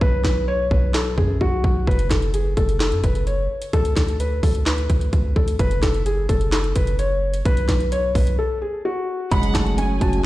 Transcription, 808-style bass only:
0.01 0.24 B1 loud
0.24 0.69 B1 loud
0.71 1.16 B1 loud
1.18 1.40 F#2 loud
1.41 1.63 B1 loud
1.64 1.86 B1 loud
1.87 2.10 F#1 loud
2.11 2.55 F#1 loud
2.57 2.93 F#1 loud
2.92 3.03 F#2 loud
3.04 3.48 F#1 loud
3.73 3.96 D2 loud
3.97 4.41 D2 loud
4.43 4.88 D2 loud
4.90 5.12 D2 loud
5.13 5.35 D2 loud
5.36 5.58 D2 loud
5.59 5.82 F#1 loud
5.83 6.27 F#1 loud
6.29 6.74 F#1 loud
6.76 7.43 F#1 loud
7.45 7.68 B1 loud
7.69 8.13 B1 loud
8.15 8.38 B1 loud
9.32 9.54 F#1 loud
9.55 9.99 F#1 loud
10.01 10.26 F#1 loud

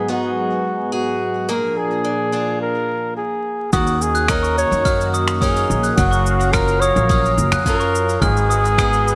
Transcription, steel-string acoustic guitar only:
0.00 1.49 G#2 medium
0.08 1.54 B3 medium
0.08 1.55 D#4 medium
0.08 0.92 G#4 medium
0.92 1.49 G#4 medium
1.49 3.68 A#3 medium
1.49 2.32 G#4 medium
2.04 2.31 D4 medium
2.32 3.17 D4 medium
2.32 3.17 F4 medium
2.32 3.18 G#4 medium
3.73 5.98 D#3 medium
4.29 5.41 C#4 medium
4.29 5.41 D#4 medium
4.29 5.42 A#4 medium
4.85 5.97 F#3 medium
5.42 6.53 C#4 medium
5.42 6.04 D#4 medium
5.42 6.54 A#4 medium
5.97 8.25 F#3 loud
6.53 7.08 C#4 medium
6.53 7.65 F4 medium
6.53 7.66 A#4 medium
7.09 7.65 C#4 medium
7.66 8.28 C#4 medium
7.66 8.28 F4 medium
7.66 8.28 A#4 medium
8.22 9.15 G#2 medium
8.78 9.15 B3 medium
8.78 9.15 D#4 medium
8.78 9.15 G#4 medium

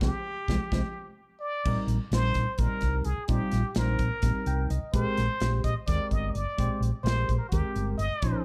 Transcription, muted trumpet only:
0.00 1.14 G4 medium
1.40 1.84 D5 medium
2.14 2.61 C5 loud
2.59 3.06 A#4 medium
3.05 3.30 G#4 medium
3.29 3.78 G4 medium
3.77 4.70 A#4 medium
4.93 5.59 C5 loud
5.64 5.74 D#5 loud
5.87 6.14 D5 loud
6.12 6.35 D#5 medium
6.34 6.81 D5 medium
7.03 7.37 C5 medium
7.38 7.48 A#4 medium
7.49 7.94 G4 medium
7.97 8.41 D#5 medium

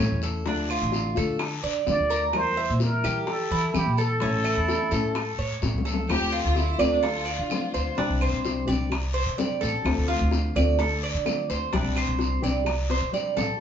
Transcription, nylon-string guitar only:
0.00 0.45 E3 soft
0.00 0.44 A3 medium
0.00 0.45 C#4 medium
0.00 0.46 E4 medium
0.45 1.15 D3 medium
0.45 1.15 A3 medium
0.45 1.15 D4 medium
0.45 1.14 F4 medium
1.15 1.39 A3 medium
1.15 1.39 D4 medium
1.15 1.38 F4 medium
1.40 muted nylon-string guitar stroke medium
1.86 2.32 D3 soft
1.86 2.33 A3 medium
1.86 2.33 D4 soft
1.86 2.33 F4 medium
2.33 3.27 E3 medium
2.33 3.04 G3 medium
2.33 3.03 E4 medium
3.04 3.27 G3 medium
3.04 3.27 E4 medium
3.27 muted nylon-string guitar stroke medium
3.74 4.20 E3 medium
3.74 4.21 G3 soft
3.74 4.21 E4 medium
4.21 4.91 E3 medium
4.21 4.91 A3 medium
4.21 4.92 C#4 medium
4.21 4.90 E4 medium
4.91 5.15 A3 medium
4.91 5.15 C#4 medium
4.91 5.14 E4 medium
5.15 muted nylon-string guitar stroke medium
5.61 6.08 E3 soft
5.61 6.08 A3 medium
5.61 6.09 C#4 soft
5.61 6.09 E4 medium
6.09 6.79 D3 medium
6.09 6.79 A3 medium
6.09 6.79 C4 medium
6.09 6.77 F4 medium
6.78 7.01 A3 medium
6.78 7.01 C4 medium
6.78 7.02 F4 medium
7.02 muted nylon-string guitar stroke medium
7.49 7.96 D3 soft
7.49 7.96 A3 soft
7.49 7.96 C4 soft
7.49 7.97 F4 medium
7.96 8.66 C3 medium
7.96 8.67 G3 medium
7.96 8.68 C4 medium
7.96 8.68 D4 medium
7.96 8.66 G4 medium
8.67 8.90 G3 medium
8.67 8.90 C4 medium
8.67 8.90 D4 medium
8.67 8.90 G4 medium
8.91 muted nylon-string guitar stroke medium
9.37 9.83 G3 medium
9.37 9.84 C4 medium
9.37 9.85 D4 medium
9.37 9.85 G4 medium
9.84 10.54 D3 medium
9.84 10.54 A3 medium
9.84 10.56 C4 medium
9.84 10.55 F4 medium
10.56 10.78 A3 medium
10.56 10.79 C4 medium
10.56 10.78 F4 medium
10.79 muted nylon-string guitar stroke medium
11.25 11.72 D3 medium
11.25 11.72 A3 medium
11.25 11.72 C4 medium
11.25 11.72 F4 medium
11.72 12.42 C3 medium
11.72 12.42 G3 medium
11.72 12.43 C4 medium
11.72 12.42 D4 medium
11.72 12.41 G4 medium
12.42 12.65 G3 medium
12.42 12.65 C4 medium
12.42 12.65 D4 medium
12.42 12.65 G4 medium
12.66 muted nylon-string guitar stroke medium
13.12 13.58 G3 medium
13.12 13.59 C4 soft
13.12 13.59 D4 soft
13.12 13.60 G4 medium

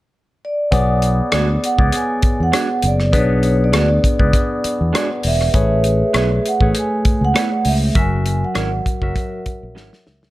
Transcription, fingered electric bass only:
0.73 1.20 B1 medium
1.33 1.56 D2 medium
1.79 1.89 C#2 medium
2.23 muted fingered electric bass stroke soft
2.40 2.50 E2 medium
2.83 3.15 F#1 medium
3.14 3.74 B1 loud
3.74 3.97 D2 medium
4.20 4.31 C#2 medium
4.64 muted fingered electric bass stroke soft
4.81 4.91 E2 medium
5.24 5.48 E1 medium
5.54 6.02 A1 medium
6.14 6.38 B1 medium
6.61 6.72 A1 medium
7.06 muted fingered electric bass stroke soft
7.21 7.32 C#2 medium
7.65 7.89 C#2 medium
7.96 8.43 F#1 medium
8.56 8.79 G#1 medium
9.02 9.13 F#1 medium
9.46 muted fingered electric bass stroke soft
9.63 9.77 A#1 medium
9.77 9.89 G#1 medium
10.07 10.30 C#2 medium

